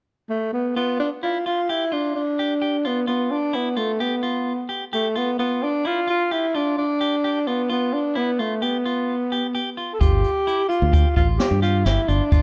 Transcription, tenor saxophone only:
0.30 A3
0.53 B3
0.76 B3
1.00 D4
1.23 F4
1.47 F4
1.70 E4
1.93 D4
2.15 D4
2.87 B3
3.08 B3
3.31 D4
3.55 B3
3.77 A3
4.01 B3
4.94 A3
5.17 B3
5.39 B3
5.63 D4
5.87 F4
6.10 F4
6.32 E4
6.55 D4
6.78 D4
7.48 B3
7.71 B3
7.93 D4
8.17 B3
8.40 A3
8.63 B3
9.93 A4
10.00 G4
10.69 F4
11.16 F4
11.38 G4
11.62 F4
11.84 E4
12.08 D4

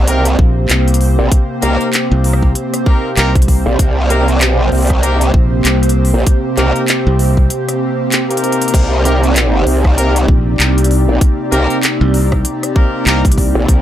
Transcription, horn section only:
0.08 A#3 C4 D#4 G4 A#4
1.62 A#3 C4 D#4 G4 A#4
2.86 A#3 C4 D#4 G4 A#4
3.17 A#3 C4 D#4 G4 A#4
4.10 A#3 C4 D#4 G4 A#4
5.03 A#3 C4 D#4 G4 A#4
6.58 A#3 C4 D#4 G4 A#4
8.30 A#3 C4 D#4 G4 A#4
9.05 A#3 C4 D#4 G4 A#4
9.97 A#3 C4 D#4 G4 A#4
11.52 A#3 C4 D#4 G4 A#4
12.76 A#3 C4 D#4 G4 A#4
13.07 A#3 C4 D#4 G4 A#4

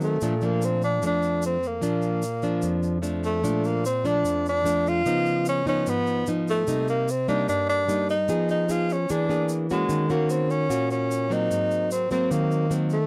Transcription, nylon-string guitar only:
Already playing: D#3 F#3 A#3 C4
0.22 A#2 F3 A3 D4
0.42 F3 A3 D4
1.02 F2 F3 A3 D4
1.81 A#2 F3 D4
2.43 F3 D4
2.63 F2
3.02 F3 A3 D4
3.43 A#2 F3 A3 D4
4.04 F3 A3 D4
4.24 F2
4.64 F3 A3 D4
5.06 C#3 F3 B3 D#4
5.66 F3 B3 D#4
5.87 G#2
6.28 F3 B3 D#4
6.67 C3 G3 A#3 D#4
7.28 G3 A#3 D#4
7.49 G2
7.88 G3 A#3 D#4
8.29 F3 B3 D#4 G#4
8.69 B3 D#4 G#4
9.10 E3 A#3 D4 G#4
9.29 A#3 D4 G#4
9.71 A#3 C#4 F#4
9.89 D#3
10.10 A#3 C#4 F#4
10.70 A#2 A#3 C#4 F#4
11.30 F#3 A#3 C4
11.51 G#2
12.11 F#3 A#3 C4
12.31 D#3
12.70 F#3 A#3 C4

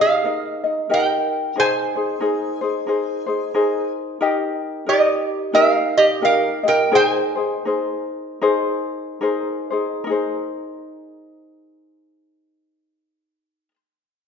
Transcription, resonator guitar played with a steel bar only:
0.01 G#4 F5
0.94 A#4 G5
1.60 C5 G#5
4.89 G4 D#5
5.55 A#4 F5
5.97 G4 D#5
6.25 A#4 F5
6.68 A#4 G5
6.95 C5 G5
7.07 G#5

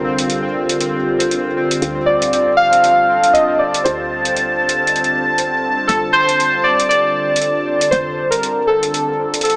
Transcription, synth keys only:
2.06 D5
2.57 F5
3.33 D#5
3.59 D5
3.84 C5
5.87 A4
6.13 C5
6.64 D5
6.89 D5
7.91 C5
8.31 A#4
8.67 A4
9.43 A4

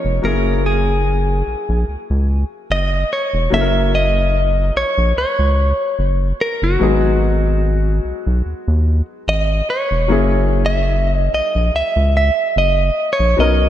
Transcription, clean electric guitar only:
Already playing: C#5
0.25 A#4
0.66 G#4
2.72 D#5
3.13 C#5
3.54 E5
3.95 D#5
4.77 C#5
5.18 C#5
6.41 A#4
6.64 F#4
9.29 D#5
9.70 C#5
10.66 E5
11.15 D#5
11.34 D#5
11.76 E5
12.17 E5
12.58 D#5
13.13 C#5
13.40 D#5

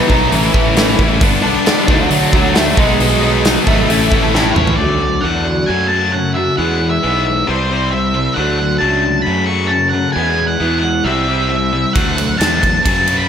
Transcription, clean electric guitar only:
4.77 D3 A3 D4 F#4
5.23 D3 A3 D4 F#4
5.68 F#3 A3 C#4 F#4
5.90 A3 C#4 F#4
6.13 F#3 A3 C#4 F#4
6.35 A3 C#4 F#4
6.57 E3 G#3 B3 E4
7.01 E3 G#3 B3 E4
7.47 C3 G3 C4 E4
7.69 G3 C4 E4
7.92 C3 G3 C4 E4
8.14 G3 C4 E4
8.36 D3 F#3 A3 D4
8.82 F#3 A3 D4
9.26 F#2 C#3 F#3 A3 C#4
9.49 F#3 A3 C#4
9.70 C#3 F#3 A3 C#4
9.92 F#3 A3 C#4
10.16 E3 G#3 B3 E4
10.61 E3 G#3 B3 E4
11.06 C3 G3 C4 E4
11.27 G3 C4 E4
11.50 C3 G3 C4 E4
11.73 G3 C4 E4

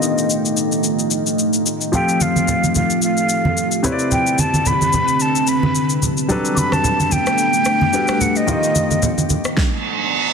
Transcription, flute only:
Already playing: D#5
1.95 G5
2.22 F5
2.76 F5
3.03 F5
4.12 G5
4.40 A5
4.67 B5
5.22 A5
5.49 B5
6.55 B5 D6
6.73 A5
7.12 G5
8.21 F#5
8.37 D#5

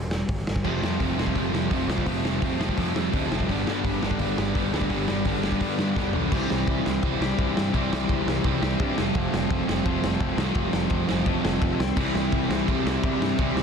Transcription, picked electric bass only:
Already playing: E1
0.29 G1
0.48 G1
0.65 F1
0.82 F2
1.00 F1
1.18 F1
1.35 F1
1.52 F1
1.71 F1
1.87 C2
2.06 F1
2.23 F1
2.42 F1
2.78 F2
3.13 D2
3.31 F1
3.49 G1
3.67 G2
3.84 G1
4.02 G1
4.20 G1
4.38 G1
4.55 G1
4.73 D2
4.91 G1
5.10 G1
5.25 G1
5.61 G2
5.96 F1
6.15 B1
6.32 C2
6.51 C2
6.67 C2
6.87 C2
7.03 C2
7.21 C2
7.39 C2
7.58 G2
7.74 C2
7.92 C2
8.09 C2
8.26 C2
8.45 C2
8.62 C2
8.80 G2
8.98 F1
9.15 F1
9.34 F1
9.50 F1
9.69 F1
9.85 F1
10.03 F1
10.20 F1
10.37 C2
10.55 F1
10.74 F1
10.91 F1
11.11 F1
11.26 F1
11.45 F1
11.62 F1
11.79 C2
11.96 C2
12.15 C2
12.32 C2
12.50 C2
12.68 C2
12.85 C2
13.03 C2
13.21 G2
13.39 C2
13.55 C2

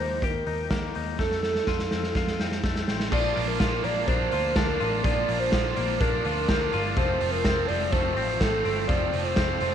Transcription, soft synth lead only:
0.00 C5
0.24 A#4
1.19 A4
1.43 A4
3.12 D5
3.48 A#4
3.84 D5
4.07 C5
4.56 A#4
5.03 D5
5.40 C5
5.75 C5
6.00 A#4
6.48 A#4
6.97 C5
7.31 A#4
7.67 D5
7.91 C5
8.40 A4
8.88 D5
9.23 C5
9.59 C5

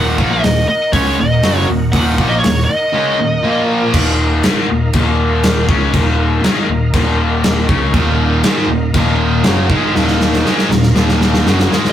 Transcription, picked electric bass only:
Already playing: D#1
0.19 A#1
0.44 D#1
0.68 muted picked electric bass stroke
0.93 C#2
1.18 D#1
1.43 F#1
1.68 D#1
1.93 D#1
2.19 A#1
2.44 D#1
2.69 muted picked electric bass stroke
3.93 D#1
4.44 G#1
4.70 D#1
4.94 D#1
5.68 C#2
5.94 D#1
6.42 G#1
6.67 D#1
6.94 D#1
7.69 C#2
7.94 D#1
8.44 G#1
8.68 D#1
8.94 D#1
9.44 F#1
9.69 G#1
9.94 D#1
10.45 G#1
10.70 D#1
10.94 D#1
11.46 F#1
11.71 G#1

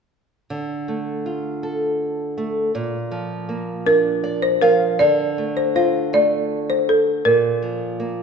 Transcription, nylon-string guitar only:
0.50 D3
0.88 A3
1.26 F4
1.63 A4
2.38 A3
2.75 A#2
3.12 F3
3.49 A#3
3.86 D4
4.24 D5
4.62 F3 F5
5.00 D3
5.38 A3
5.76 F4
6.13 A3
7.25 A#2
7.62 F3
8.00 A#3

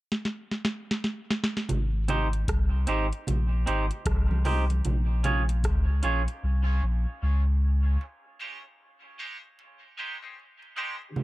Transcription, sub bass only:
1.70 G#1
2.48 C2
2.88 G#1
3.28 A#1
3.68 G#1
4.06 C2
4.86 A#1
5.64 C#2
6.04 A#1
6.43 C2
6.83 A#1
7.23 C#2

